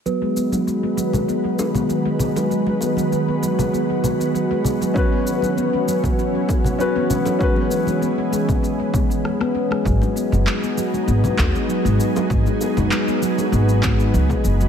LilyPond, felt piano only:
\new Staff \with { instrumentName = "Felt piano" } { \time 4/4 \key gis \minor \tempo 4 = 98 r1 | r1 | <cis' fis' b'>2. <cis' fis' b'>4 | <cis' fis' b'>2. r4 |
r1 | r1 | }